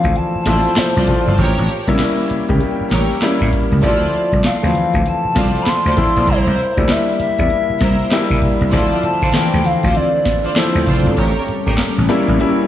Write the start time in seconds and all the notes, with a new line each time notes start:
Already playing: E3 F3 A3 C4 D4 E4 F5
0.04 D2, kick, closed hi-hat
0.16 A5, closed hi-hat
0.35 muted slap bass stroke
0.46 A1 F3 A3 C4 E4 F4 C5 D5, kick, snare, closed hi-hat
0.65 closed hi-hat
0.76 C5, muted slap bass stroke, snare, clap, closed hi-hat
0.96 C2 F4 C5 D5
1.07 F3 A3 C4 F4, kick, closed hi-hat
1.26 G1 F4 C5 D5, closed hi-hat
1.38 A1 G4 A#4 C#5, kick, closed hi-hat
1.58 A1
1.69 closed hi-hat
1.87 C2 G3 A#3 C#4 E4, kick, closed hi-hat
1.99 snare, clap, closed hi-hat
2.30 muted slap bass stroke, closed hi-hat
2.49 C#2 G3 A#3 C#4 G4, kick, closed hi-hat
2.61 closed hi-hat
2.81 muted slap bass stroke
2.91 A1 G4 A#4 C#5, kick, snare, closed hi-hat
3.11 closed hi-hat
3.22 G3 A#3 C#4 E4, snare, clap, closed hi-hat
3.41 A2, kick
3.53 kick, closed hi-hat
3.72 C#2, closed hi-hat
3.82 D2 F3 A3 C4 E4 F4 C5 D5, kick, closed hi-hat
4.14 closed hi-hat
4.32 C2, kick, closed hi-hat
4.44 F5, muted slap bass stroke, snare, clap, closed hi-hat
4.62 D2 E3 F3 A3 C4
4.75 closed hi-hat
4.94 D2, kick, closed hi-hat
5.06 A5, closed hi-hat
5.25 muted slap bass stroke
5.35 C2 F3 A3 C4 F4 C5 D5, kick, snare, closed hi-hat
5.55 closed hi-hat
5.62 B5
5.66 C6, muted slap bass stroke, snare, clap, closed hi-hat
5.85 D2 F4 C5 D5
5.96 F3 A3 C4 E4, kick, closed hi-hat
6.16 A#1 F4 C5 D5, closed hi-hat
6.27 C2 E4 A#4 C5, kick, closed hi-hat
6.47 C2
6.59 closed hi-hat
6.77 D2 G3 A#3 D4 E4, kick, closed hi-hat
6.89 E5, snare, clap, closed hi-hat
7.20 E5, muted slap bass stroke, closed hi-hat
7.38 E2 G3 A#3 D4 E4, kick, closed hi-hat
7.50 closed hi-hat
7.70 muted slap bass stroke
7.80 C2 E4 A#4 C5, kick, snare, closed hi-hat
8.00 closed hi-hat
8.11 G3 A#3 D4 E4, snare, clap, closed hi-hat
8.30 C3, kick
8.42 kick, closed hi-hat
8.61 C2, closed hi-hat
8.72 D2 D3 F3 A3 C4 D4 E4 F4 A4 C5 D5, kick, closed hi-hat
9.03 A5, muted slap bass stroke, closed hi-hat
9.22 D3 F4 C5 D5, kick, closed hi-hat
9.34 E3 F3 A3 C4 G5, muted slap bass stroke, snare, clap, closed hi-hat
9.54 D2
9.64 F5, open hi-hat
9.83 D2 F4 C5 D5, kick, closed hi-hat
9.95 D5, closed hi-hat
10.25 kick, snare, closed hi-hat
10.44 F4 C5 D5, closed hi-hat
10.56 F3 A3 C4 E4 C5, snare, clap, closed hi-hat
10.75 D2
10.86 F1 F4 C5 D5, kick, open hi-hat
11.06 G1, closed hi-hat
11.16 A1 G3 C#4 G4 A#4 C#5, kick, closed hi-hat
11.48 muted slap bass stroke, closed hi-hat
11.66 A2 G4 A#4 C#5, kick, closed hi-hat
11.78 muted slap bass stroke, snare, clap, closed hi-hat
11.98 A1
12.09 G3 A#3 C#4 E4, open hi-hat
12.28 A1, kick, closed hi-hat
12.40 G3 A#3 C#4 E4, closed hi-hat